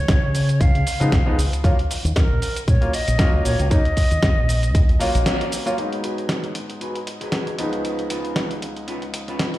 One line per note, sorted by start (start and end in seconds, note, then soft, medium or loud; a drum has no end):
0.00 0.62 C#5 loud
0.08 0.19 C#2 loud
0.08 kick loud
0.08 snare loud
0.08 closed hi-hat medium
0.08 shaker soft
0.23 0.62 C#3 medium
0.35 open hi-hat medium
0.35 shaker medium
0.49 closed hi-hat medium
0.49 shaker soft
0.61 0.70 C#2 loud
0.61 1.38 F5 loud
0.61 kick loud
0.61 closed hi-hat medium
0.61 shaker soft
0.75 0.83 C#3 medium
0.75 closed hi-hat soft
0.87 open hi-hat loud
0.87 shaker medium
1.00 1.09 C#3 medium
1.00 1.09 F3 medium
1.00 1.10 G#3 medium
1.00 1.10 B3 medium
1.00 1.10 D#4 loud
1.00 closed hi-hat medium
1.00 shaker soft
1.12 1.31 B1 medium
1.12 kick loud
1.12 snare loud
1.12 closed hi-hat medium
1.12 shaker soft
1.26 1.35 F3 medium
1.26 1.35 G#3 medium
1.26 1.35 B3 medium
1.26 1.36 D#4 loud
1.38 1.48 C#2 medium
1.38 open hi-hat medium
1.38 shaker medium
1.53 closed hi-hat soft
1.53 shaker soft
1.64 1.74 D#2 loud
1.64 1.75 F#3 medium
1.64 1.75 A#3 medium
1.64 1.75 C#4 medium
1.64 1.75 F4 loud
1.64 kick loud
1.64 closed hi-hat medium
1.64 shaker soft
1.79 closed hi-hat soft
1.91 open hi-hat medium
1.91 shaker medium
2.05 2.12 D#2 medium
2.05 closed hi-hat medium
2.05 shaker soft
2.16 2.26 D#2 medium
2.16 2.64 A#4 loud
2.16 kick loud
2.16 snare loud
2.16 closed hi-hat medium
2.16 shaker soft
2.30 2.38 A#1 medium
2.42 open hi-hat medium
2.42 shaker medium
2.56 closed hi-hat medium
2.56 shaker soft
2.68 2.77 A#2 medium
2.68 2.96 C#5 loud
2.68 kick loud
2.68 closed hi-hat medium
2.68 shaker soft
2.81 2.90 F#3 medium
2.81 2.91 A#3 medium
2.81 2.91 C#4 medium
2.81 2.91 F4 medium
2.81 closed hi-hat soft
2.93 3.47 D#5 loud
2.93 open hi-hat loud
2.93 shaker medium
3.08 3.16 A#1 medium
3.08 closed hi-hat medium
3.08 shaker soft
3.18 3.68 F#3 loud
3.18 3.68 A#3 medium
3.18 3.68 C#4 medium
3.18 3.68 F4 loud
3.18 kick loud
3.18 snare loud
3.18 closed hi-hat medium
3.18 shaker soft
3.34 3.41 C#2 medium
3.45 3.55 A#1 medium
3.45 3.71 C#5 loud
3.45 open hi-hat medium
3.45 shaker medium
3.59 3.67 C#2 loud
3.59 closed hi-hat medium
3.59 shaker soft
3.70 3.82 F#3 medium
3.70 3.82 A#3 medium
3.70 3.82 C#4 medium
3.70 3.82 D#4 loud
3.70 5.22 D#5 loud
3.70 kick loud
3.70 closed hi-hat medium
3.70 shaker soft
3.85 closed hi-hat soft
3.97 kick medium
3.97 open hi-hat loud
3.97 shaker medium
4.11 4.19 D#2 medium
4.11 closed hi-hat medium
4.11 shaker soft
4.23 4.33 D#2 loud
4.23 kick loud
4.23 snare loud
4.23 closed hi-hat medium
4.23 shaker soft
4.37 4.75 A#1 medium
4.49 open hi-hat medium
4.49 shaker medium
4.63 closed hi-hat medium
4.63 shaker soft
4.75 4.84 D#2 loud
4.75 kick loud
4.75 closed hi-hat medium
4.75 shaker soft
4.89 4.97 A#1 medium
4.89 closed hi-hat soft
4.99 5.62 F#3 medium
4.99 5.63 A#3 medium
4.99 5.63 C#4 medium
4.99 5.63 F4 loud
4.99 open hi-hat loud
4.99 shaker medium
5.15 5.23 A#1 medium
5.15 closed hi-hat medium
5.15 shaker soft
5.26 snare loud
5.26 closed hi-hat medium
5.26 shaker soft
5.41 closed hi-hat soft
5.52 open hi-hat medium
5.52 shaker medium
5.66 5.75 F#3 medium
5.66 5.75 A#3 medium
5.66 5.75 C#4 medium
5.66 5.75 F4 loud
5.66 closed hi-hat medium
5.66 shaker soft
5.77 7.56 G#2 medium
5.77 7.56 F#3 medium
5.77 7.56 B3 medium
5.77 7.57 D#4 medium
5.77 5.92 F#4 loud
5.77 5.92 G#4 medium
5.77 5.93 B4 loud
5.77 closed hi-hat medium
5.93 closed hi-hat soft
6.03 6.44 F#4 medium
6.03 6.44 G#4 medium
6.03 6.44 B4 medium
6.03 closed hi-hat medium
6.18 closed hi-hat soft
6.29 snare loud
6.29 closed hi-hat medium
6.44 closed hi-hat soft
6.55 closed hi-hat medium
6.70 closed hi-hat soft
6.81 6.95 F#4 medium
6.81 6.96 G#4 medium
6.81 6.96 B4 medium
6.81 closed hi-hat medium
6.95 closed hi-hat soft
7.06 muted clean electric guitar stroke soft
7.06 closed hi-hat medium
7.21 7.53 F#4 medium
7.21 7.53 G#4 medium
7.21 7.53 B4 medium
7.21 closed hi-hat soft
7.32 snare loud
7.32 closed hi-hat medium
7.47 closed hi-hat soft
7.58 9.58 C#2 medium
7.58 9.58 F3 medium
7.58 9.58 G#3 medium
7.58 9.58 B3 medium
7.58 8.01 C#4 medium
7.58 9.58 D#4 medium
7.58 8.01 F4 medium
7.58 8.02 B4 medium
7.58 closed hi-hat medium
7.73 closed hi-hat soft
7.85 closed hi-hat medium
7.99 closed hi-hat soft
8.10 8.50 C#4 medium
8.10 8.51 F4 medium
8.10 8.51 B4 medium
8.10 closed hi-hat medium
8.25 closed hi-hat soft
8.36 snare loud
8.36 closed hi-hat medium
8.51 closed hi-hat soft
8.62 closed hi-hat medium
8.77 closed hi-hat soft
8.88 9.02 C#4 medium
8.88 9.03 F4 medium
8.88 9.03 B4 medium
8.88 closed hi-hat medium
9.02 closed hi-hat soft
9.14 muted clean electric guitar stroke soft
9.14 closed hi-hat medium
9.28 9.58 C#4 medium
9.28 9.58 F4 medium
9.28 9.58 B4 medium
9.28 closed hi-hat soft
9.39 snare loud
9.39 closed hi-hat medium
9.54 closed hi-hat soft